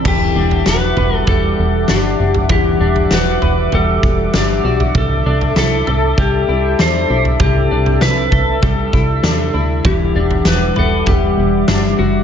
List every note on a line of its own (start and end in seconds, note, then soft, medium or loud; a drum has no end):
0.00 0.36 D4 soft
0.00 0.39 E4 medium
0.00 0.12 A4 medium
0.04 0.32 E1 loud
0.04 2.50 E3 medium
0.04 4.91 G3 medium
0.04 0.68 G4 medium
0.04 12.24 E5 medium
0.04 4.91 F#5 medium
0.04 7.36 D6 medium
0.04 kick medium
0.04 floor tom medium
0.04 crash medium
0.35 0.62 E1 loud
0.35 1.89 D4 soft
0.51 floor tom soft
0.66 0.93 E1 loud
0.66 1.58 F#4 soft
0.66 1.16 B4 medium
0.66 snare medium
0.97 1.24 E1 medium
0.97 3.41 B4 medium
0.97 floor tom medium
1.16 1.29 A4 medium
1.27 1.55 E1 loud
1.27 3.73 G3 medium
1.27 1.91 A4 medium
1.27 kick medium
1.27 floor tom medium
1.58 1.85 E1 loud
1.88 2.16 G1 medium
1.88 2.80 D4 medium
1.88 2.33 G4 medium
1.88 snare medium
2.20 2.51 F#1 medium
2.34 floor tom medium
2.49 2.77 E1 loud
2.49 5.29 E3 medium
2.49 3.14 G4 medium
2.49 kick medium
2.49 floor tom medium
2.80 3.07 E1 medium
2.80 4.34 D4 soft
2.96 floor tom soft
3.11 3.38 E1 medium
3.11 4.03 F#4 medium
3.11 3.75 B4 medium
3.11 snare medium
3.42 3.69 E1 medium
3.42 5.01 B4 medium
3.42 floor tom medium
3.72 3.99 E1 medium
3.72 5.90 G3 medium
3.72 4.36 A4 medium
3.72 floor tom medium
4.03 4.30 E1 loud
4.03 kick medium
4.34 4.61 G1 medium
4.34 5.26 D4 medium
4.34 4.78 G4 medium
4.34 snare medium
4.64 4.91 B1 medium
4.64 5.01 F#4 soft
4.80 floor tom medium
4.95 5.22 C2 loud
4.95 9.81 A4 medium
4.95 5.57 A4 medium
4.95 9.81 A5 medium
4.95 kick medium
4.95 floor tom loud
5.26 5.53 C2 medium
5.26 6.79 D4 medium
5.41 floor tom medium
5.56 5.83 C2 loud
5.56 6.48 E4 soft
5.56 6.19 A4 medium
5.56 snare medium
5.87 6.14 C2 medium
5.87 8.31 A4 medium
5.87 floor tom medium
6.18 6.45 C2 loud
6.18 8.62 G3 medium
6.18 6.81 G4 medium
6.18 kick medium
6.18 floor tom medium
6.48 6.75 C2 loud
6.48 7.09 E4 soft
6.79 7.06 E2 medium
6.79 7.71 D4 medium
6.79 7.23 C5 medium
6.79 snare medium
7.10 7.37 B1 medium
7.10 8.01 E4 soft
7.25 floor tom soft
7.40 7.67 C2 medium
7.40 9.85 C3 medium
7.40 8.04 G4 medium
7.40 9.82 E6 medium
7.40 kick medium
7.40 floor tom medium
7.71 7.98 C2 medium
7.71 9.23 D4 soft
7.86 floor tom soft
8.01 8.28 C2 medium
8.01 8.93 E4 soft
8.01 8.65 B4 medium
8.01 snare medium
8.32 8.59 C2 medium
8.32 9.91 A4 medium
8.32 kick medium
8.32 floor tom medium
8.62 8.89 C2 loud
8.62 11.07 G3 medium
8.62 9.51 A4 medium
8.62 kick medium
8.62 floor tom medium
8.93 9.20 C2 loud
8.93 9.54 E4 soft
8.93 kick medium
9.23 9.50 E2 medium
9.23 10.15 D4 medium
9.23 snare medium
9.54 9.81 D2 medium
9.54 10.19 E4 soft
9.84 10.12 E1 loud
9.84 12.24 E3 medium
9.84 12.24 G3 medium
9.84 10.49 G4 medium
9.84 12.24 F#5 medium
9.84 12.24 D6 medium
9.84 kick medium
9.84 floor tom medium
10.15 10.42 E1 medium
10.15 11.68 D4 soft
10.31 floor tom medium
10.45 10.73 E1 loud
10.45 10.75 B4 medium
10.45 snare medium
10.76 11.03 E1 medium
10.76 11.09 A4 medium
10.76 12.24 B4 medium
10.76 floor tom medium
11.06 11.34 E1 loud
11.06 12.24 G3 medium
11.06 11.96 G4 medium
11.06 kick medium
11.06 floor tom medium
11.37 11.65 E1 loud
11.68 11.95 G1 medium
11.68 12.24 D4 medium
11.68 snare medium
11.99 12.24 F#1 medium
11.99 12.24 F#4 medium